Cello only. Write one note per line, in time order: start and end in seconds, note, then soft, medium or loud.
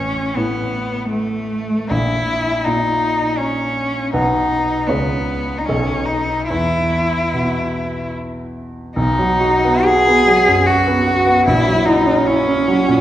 0.00 0.37 C#4 medium
0.36 1.09 B3 medium
1.10 1.92 A3 medium
1.91 2.66 E4 medium
2.65 3.40 D#4 medium
3.38 4.13 C#4 medium
4.14 4.88 D#4 medium
4.87 5.60 B3 medium
5.58 5.67 D#4 soft
5.66 6.08 C#4 medium
6.06 6.48 D#4 medium
6.49 8.11 E4 medium
8.96 9.86 D#4 medium
9.85 10.68 G#4 loud
10.66 11.45 F#4 medium
11.46 11.87 E4 medium
11.85 12.28 D#4 medium
12.26 13.01 C#4 medium